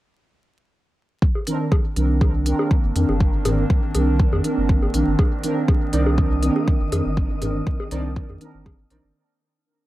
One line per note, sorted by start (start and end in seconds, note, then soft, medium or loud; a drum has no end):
1.22 9.11 D#3 medium
1.22 9.12 A#3 medium
1.22 9.12 C4 medium
1.22 9.11 D4 medium
1.22 kick loud
1.35 low bongo soft
1.47 1.65 D#3 medium
1.47 1.65 C4 medium
1.47 1.65 D4 medium
1.47 1.65 A#4 loud
1.47 closed hi-hat medium
1.72 kick loud
1.72 low bongo medium
1.96 2.53 C2 loud
1.96 2.43 D#3 medium
1.96 2.43 C4 medium
1.96 2.43 D4 medium
1.96 2.43 A#4 medium
1.96 closed hi-hat medium
2.21 kick loud
2.21 low bongo soft
2.46 2.57 D#3 medium
2.46 2.57 C4 medium
2.46 2.57 D4 medium
2.46 2.57 A#4 medium
2.46 closed hi-hat medium
2.59 2.76 D#3 medium
2.59 2.76 C4 medium
2.59 2.76 D4 medium
2.59 2.76 A#4 medium
2.59 low bongo medium
2.71 kick loud
2.84 2.92 G1 medium
2.95 3.05 F2 loud
2.95 3.13 D#3 medium
2.95 3.13 C4 medium
2.95 3.13 D4 medium
2.95 3.13 A#4 medium
2.95 closed hi-hat medium
3.09 3.64 G1 loud
3.09 low bongo soft
3.20 kick loud
3.45 3.63 D#3 medium
3.45 3.63 C4 medium
3.45 3.63 D4 medium
3.45 3.63 A#4 loud
3.45 closed hi-hat medium
3.45 mid tom medium
3.45 low bongo medium
3.70 kick loud
3.95 4.26 C2 loud
3.95 4.42 D#3 medium
3.95 4.42 C4 medium
3.95 4.42 D4 medium
3.95 4.42 A#4 medium
3.95 closed hi-hat medium
3.95 low bongo soft
4.20 kick loud
4.33 4.41 F2 medium
4.33 low bongo medium
4.44 4.55 D#3 medium
4.44 4.55 C4 medium
4.44 4.56 D4 medium
4.44 4.55 A#4 medium
4.44 closed hi-hat medium
4.57 4.88 G1 medium
4.57 4.74 D#3 medium
4.57 4.74 C4 medium
4.57 4.74 D4 medium
4.57 4.74 A#4 medium
4.69 kick loud
4.82 low bongo soft
4.94 5.03 A#1 medium
4.94 5.12 D#3 medium
4.94 5.12 C4 medium
4.94 5.12 D4 medium
4.94 5.12 A#4 medium
4.94 closed hi-hat medium
5.07 5.15 G1 loud
5.19 9.17 D#3 medium
5.19 9.17 D#6 medium
5.19 kick loud
5.19 low bongo medium
5.44 5.61 D#3 medium
5.44 5.61 C4 medium
5.44 5.61 D4 medium
5.44 5.61 A#4 loud
5.44 closed hi-hat medium
5.68 kick loud
5.68 low bongo soft
5.93 6.49 C2 loud
5.93 6.40 D#3 medium
5.93 6.40 C4 medium
5.93 6.40 D4 medium
5.93 6.04 D#4 medium
5.93 6.04 A#4 medium
5.93 6.40 A#4 medium
5.93 6.04 C5 medium
5.93 6.04 D5 loud
5.93 closed hi-hat medium
6.06 low bongo medium
6.18 kick loud
6.43 6.54 D#3 medium
6.43 6.54 C4 medium
6.43 6.54 D4 medium
6.43 6.54 A#4 loud
6.43 closed hi-hat medium
6.56 6.73 D#3 medium
6.56 6.73 C4 medium
6.56 6.73 D4 medium
6.56 6.73 A#4 medium
6.56 low bongo soft
6.68 kick loud
6.81 6.89 G1 medium
6.92 7.01 F2 loud
6.92 7.10 D#3 medium
6.92 7.10 C4 medium
6.92 7.10 D4 medium
6.92 7.10 A#4 medium
6.92 closed hi-hat medium
6.92 low bongo medium
7.05 7.61 G1 loud
7.17 kick loud
7.42 7.60 D#3 medium
7.42 7.60 C4 medium
7.42 7.60 D4 medium
7.42 7.60 A#4 loud
7.42 closed hi-hat medium
7.42 mid tom medium
7.42 low bongo soft
7.67 kick loud
7.80 low bongo medium
7.91 8.23 C2 loud
7.91 8.38 D#3 medium
7.91 8.38 C4 medium
7.91 8.38 D4 medium
7.91 8.02 D#4 medium
7.91 8.02 A#4 medium
7.91 8.38 A#4 medium
7.91 8.02 C5 medium
7.91 8.02 D5 loud
7.91 closed hi-hat medium
8.16 kick loud
8.29 8.37 F2 medium
8.29 low bongo soft
8.41 8.69 D#3 loud
8.41 8.69 C4 medium
8.41 8.69 D4 medium
8.41 8.69 A#4 loud
8.41 closed hi-hat medium
8.54 8.85 G1 medium
8.66 kick loud
8.66 low bongo medium
8.90 9.00 A#1 medium
8.90 9.14 D#3 medium
8.90 9.14 C4 medium
8.90 9.14 D4 medium
8.90 9.01 D#4 medium
8.90 9.01 A#4 medium
8.90 9.14 A#4 loud
8.90 9.01 C5 medium
8.90 9.01 D5 loud
8.90 closed hi-hat medium
9.04 9.12 G1 loud